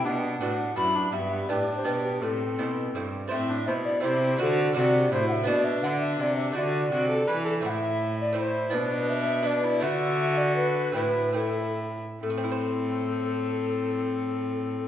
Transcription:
0.05 lute B2, cello B2, viola D4, recorder F#5
0.41 lute A2 B3 D4 F#4, cello A2, viola D4
0.76 lute F#2 B3 D4 F#4, cello F#2, viola E4, recorder B5
0.95 viola D4
1.12 lute G2, cello G2, viola B3, recorder E5
1.31 viola B3
1.48 lute A2 B3 D4 G4, cello A2, viola D4, recorder D5
1.77 recorder C5
1.84 lute B2 B3 D4 G4, cello B2, recorder B4
2.04 recorder G4
2.21 cello A2, lute A2, viola C4, recorder A4
2.58 cello B2, lute B2 A3 E4 C5
2.95 cello G2, lute G2 A3 C4 E4
3.28 lute A2 A3 E4 C5, recorder E5
3.32 cello A2, viola C4
3.50 viola D4
3.67 lute B2, cello B2, viola E4, recorder C5
3.85 recorder D5
4.00 cello C3, lute C3 A3 C4 E4, viola E4, recorder C5
4.37 cello D3, lute A3 D4 F#4, viola F#4
4.41 lute D3, recorder A4
4.73 cello C3, lute C3 A3 D4 F#4, viola F#4, recorder D5
5.12 lute A2, cello A2, viola E4, recorder C5
5.28 recorder F#5
5.32 recorder E5
5.44 lute B3 F#4, viola D4
5.48 lute B2, cello B2, recorder D5
5.64 recorder E5
5.83 cello D3, lute D3, recorder F#5
6.00 recorder E5
6.19 cello C3, lute C3, recorder D5
6.36 recorder E5
6.52 cello D3, lute D3 A3 D4 F#4, viola F#4, recorder E5
6.58 recorder D5
6.92 lute C3, cello C3, viola F#4
7.09 viola A4
7.28 lute E3, cello E3, viola B4
7.45 viola A4
7.60 lute A2 A3 C4 E4, viola E4
7.65 cello A2, recorder F#5
7.70 recorder E5
8.21 recorder D5
8.32 lute A3 C4 E4
8.37 viola E4, recorder C5
8.70 lute B2 B3 D4, cello B2
8.74 viola D4, recorder B4
9.09 recorder E5
9.42 lute B3 D4, viola D4, recorder D5
9.64 viola E4
9.80 cello D3, lute D3 A3 D4, viola F#4, recorder E5
10.37 recorder D5
10.56 recorder B4
10.92 lute A2 A3 C4 E4, viola E4
10.96 cello A2, recorder B4
11.33 lute A3 C4 E4, recorder A4
11.37 viola E4
12.22 cello A2, lute A2, viola C4, recorder A4
12.30 lute A3
12.38 lute C4
12.44 lute E4
12.51 lute C5

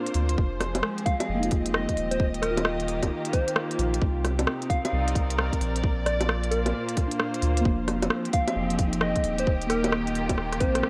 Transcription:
Already playing: string section A#2 A#3 F4 C5 D5, synth keys C4 D4
0.06 closed hi-hat
0.14 sub bass D2, open hi-hat
0.29 closed hi-hat
0.37 sub bass F1, string section F3, kick
0.53 string section G#4
0.61 cross-stick, open hi-hat, low bongo
0.75 string section C4, closed hi-hat, low bongo
0.82 synth keys G#3, string section G4, cross-stick
0.98 closed hi-hat
1.06 soft synth lead F5, kick, open hi-hat
1.17 string section D#5, soft synth lead F5, closed hi-hat, low bongo
1.29 sub bass F1
1.35 synth keys A#3
1.40 synth keys D#4, closed hi-hat
1.45 synth keys F4
1.51 kick, open hi-hat
1.66 closed hi-hat
1.74 soft synth lead D#5, cross-stick
1.89 kick, closed hi-hat
1.97 sub bass D#1, open hi-hat
2.11 soft synth lead C5, closed hi-hat
2.20 string section D#3, kick
2.34 closed hi-hat
2.42 string section A#3, soft synth lead A#4, cross-stick, open hi-hat
2.51 synth keys F4
2.57 closed hi-hat, low bongo
2.65 string section F4, cross-stick
2.80 closed hi-hat
2.88 open hi-hat
3.03 kick, closed hi-hat, low bongo
3.07 synth keys D#4
3.25 closed hi-hat
3.33 soft synth lead C5, kick, open hi-hat
3.48 closed hi-hat
3.56 cross-stick
3.71 closed hi-hat
3.79 sub bass A#1, open hi-hat
3.94 closed hi-hat
4.02 sub bass C2, string section C3, kick
4.25 string section C4, cross-stick, open hi-hat, low bongo
4.36 string section D#4, closed hi-hat, low bongo
4.42 synth keys C4
4.47 cross-stick
4.62 string section A#4, closed hi-hat
4.70 soft synth lead F5, kick, open hi-hat
4.85 string section D5, soft synth lead F5, closed hi-hat, low bongo
4.93 sub bass C2
5.08 closed hi-hat
5.15 kick, open hi-hat
5.30 closed hi-hat
5.38 cross-stick
5.53 kick, closed hi-hat
5.60 sub bass A#1, open hi-hat
5.76 closed hi-hat
5.83 string section A#2, kick
6.00 string section A#3
6.05 string section F4, soft synth lead D5, cross-stick, open hi-hat
6.21 closed hi-hat, low bongo
6.29 cross-stick
6.43 closed hi-hat
6.50 soft synth lead A#4, string section C5, open hi-hat
6.65 soft synth lead A#4, closed hi-hat, low bongo
6.75 soft synth lead A#4
6.89 closed hi-hat
6.97 kick, open hi-hat
7.07 synth keys D4
7.11 closed hi-hat
7.20 cross-stick
7.34 closed hi-hat
7.42 sub bass D2, open hi-hat
7.57 synth keys A#3, closed hi-hat
7.65 sub bass F1, string section F3, kick
7.88 string section C4, cross-stick, open hi-hat, low bongo
8.02 closed hi-hat, low bongo
8.10 cross-stick
8.25 string section G4, closed hi-hat
8.33 soft synth lead F5, kick, open hi-hat
8.48 string section G#4 D#5, soft synth lead F5, closed hi-hat, low bongo
8.56 sub bass F1
8.70 closed hi-hat
8.79 kick, open hi-hat
8.88 synth keys D#4
8.93 closed hi-hat
9.01 soft synth lead D#5, cross-stick
9.16 kick, closed hi-hat
9.24 sub bass D#1, open hi-hat
9.38 soft synth lead C5, closed hi-hat
9.47 string section D#3, kick
9.51 string section A#3
9.62 closed hi-hat
9.67 synth keys A#3, soft synth lead A#4, cross-stick, open hi-hat
9.84 closed hi-hat, low bongo
9.92 cross-stick
10.07 string section F4, closed hi-hat
10.15 open hi-hat
10.29 kick, closed hi-hat, low bongo
10.38 sub bass D#1, cross-stick
10.53 cross-stick, closed hi-hat
10.60 sub bass A#1, synth keys C4, soft synth lead C5, kick, open hi-hat
10.75 cross-stick, closed hi-hat
10.83 cross-stick

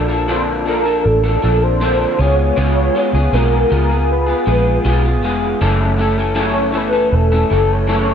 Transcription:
Already playing: fingered electric bass A#1
0.08 clean electric guitar F3 A#3 D4 A4
0.28 clean electric guitar A#2 D3 F3 A#3 D4 A4, soft synth lead C5
0.66 clean electric guitar F3 A#3 D4 A4, soft synth lead A#4
0.84 clean electric guitar F3 A#3 D4 A4
1.00 soft synth lead A#4
1.06 fingered electric bass A1, soft synth lead A4
1.24 clean electric guitar F3 A#3 D4 A4
1.42 fingered electric bass A#1, clean electric guitar F3 A#3 D4 A4
1.63 soft synth lead C5
1.81 clean electric guitar A#2 D3 F3 A#3 D4 A4
2.19 fingered electric bass C#2, clean electric guitar G#3 B3 F4 G#4, soft synth lead C#5
2.56 fingered electric bass C#2, clean electric guitar C#3 G#3 B3 F4 G#4
2.95 clean electric guitar G#3 B3 F4 G#4
3.13 fingered electric bass C#2, clean electric guitar B3 F4 G#4
3.33 fingered electric bass B1, clean electric guitar C#3 G#3 B3 F4 G#4, soft synth lead A#4
3.70 fingered electric bass C#2, clean electric guitar G#3 B3 F4 G#4
3.89 clean electric guitar B3 F4 G#4
4.12 soft synth lead B4
4.27 clean electric guitar B3 F4 G#4
4.46 fingered electric bass A#1, clean electric guitar G#3 B3 F4 G#4
4.84 fingered electric bass B1, clean electric guitar C#3 G#3 B3 F4 G#4
5.03 clean electric guitar B3 F4 G#4
5.22 fingered electric bass F1, clean electric guitar G#3 B3 F4 G#4
5.61 fingered electric bass F#1, clean electric guitar F#2 C#3 E3 A3 C#4 A4
5.98 clean electric guitar E3 A3 C#4 A4
6.18 clean electric guitar E3 A3 C#4 A4
6.35 clean electric guitar F#2 C#3 E3 A3 C#4 A4
6.39 soft synth lead C#5
6.72 clean electric guitar E3 A3 C#4 A4
6.77 soft synth lead B4
6.93 clean electric guitar E3 A3 C#4 A4
7.06 soft synth lead B4
7.12 fingered electric bass E1, soft synth lead A4
7.32 clean electric guitar E3 A3 C#4 A4
7.50 fingered electric bass F#1, clean electric guitar E3 A3 C#4 A4
7.73 soft synth lead C#5
7.87 clean electric guitar F#2 C#3 E3 A3 C#4 A4

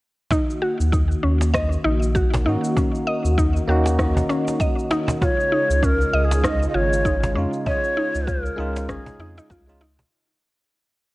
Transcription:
0.31 analog synth pad D#3 A#3 D#4 F#4, synth pluck D#4, cajon bass, kick, cabasa
0.50 cabasa
0.62 synth pluck F#4
0.80 analog synth bass D#2, cabasa
0.92 synth pluck D#4, kick, cabasa
1.11 cabasa
1.23 analog synth bass D#2, synth pluck C#4
1.41 cajon slap, cabasa
1.54 synth pluck D#5, kick, cross-stick, cabasa
1.72 cabasa
1.84 analog synth bass A#1, synth pluck D#4
2.03 cabasa
2.15 synth pluck F#4, kick, cabasa
2.33 cajon bass, cajon slap, cabasa
2.44 analog synth bass G#2, tine electric piano A#3 C#4 D#4, synth pluck D#4
2.49 tine electric piano F#4
2.64 cabasa
2.77 synth pluck C#4, kick, cajon bass, cabasa
2.95 cabasa
3.07 synth pluck D#5
3.25 analog synth bass D#2, cabasa
3.38 synth pluck D#4, kick, cabasa
3.56 cabasa
3.67 analog synth bass D#2, tine electric piano A#3 C#4 D#4 F#4, synth pluck F#4
3.86 cajon slap, cabasa
3.99 synth pluck D#4, kick, cross-stick, cabasa
4.17 cajon bass, cabasa
4.29 synth pluck C#4, cajon slap
4.48 cajon slap, cabasa
4.60 synth pluck D#5, kick, cajon slap, cabasa
4.79 cabasa
4.91 synth pluck D#4, cajon slap
5.08 cajon bass, cabasa
5.21 analog synth pad C#3 G#3 F4, synth pluck F4, ney C#5, kick, cajon bass, cabasa
5.40 cabasa
5.52 synth pluck D#4
5.70 analog synth bass C#2, cabasa
5.83 synth pluck C#4, ney A#4, kick, cabasa
6.01 cabasa
6.13 analog synth bass C#2, synth pluck D#5
6.25 ney G#4
6.31 cajon slap, cabasa
6.44 synth pluck D#4, ney D#5, kick, cross-stick, cabasa
6.62 cabasa
6.69 ney D#5
6.74 analog synth bass G#1, synth pluck F4, ney C#5
6.93 cabasa
7.05 synth pluck D#4, kick, cabasa
7.23 cajon bass, cajon slap, cabasa
7.35 analog synth bass F2, tine electric piano G#3 C#4 D#4 F4, synth pluck C#4
7.53 cabasa
7.66 ney C#5, synth pluck D#5, cajon bass, kick, cabasa
7.84 cabasa
7.97 synth pluck D#4
8.15 analog synth bass C#2, cabasa
8.27 synth pluck F4, ney A#4, kick, cabasa
8.46 cabasa
8.56 analog synth bass C#2, tine electric piano G#3 C#4 D#4, synth pluck D#4
8.60 tine electric piano F4
8.76 cajon slap, cabasa
8.89 analog synth bass G#1, synth pluck C#4, ney G#4, kick, cross-stick, cabasa
9.06 cajon bass, cabasa
9.19 analog synth bass F2, synth pluck D#4, cajon slap
9.37 synth pluck D#4, cajon slap, cabasa
9.50 analog synth bass C#2, synth pluck F4, kick, cajon slap, cabasa
9.67 tine electric piano G#3 C#4 D#4 F4, cabasa
9.81 synth pluck D#4, cajon slap
9.99 cajon bass, cabasa

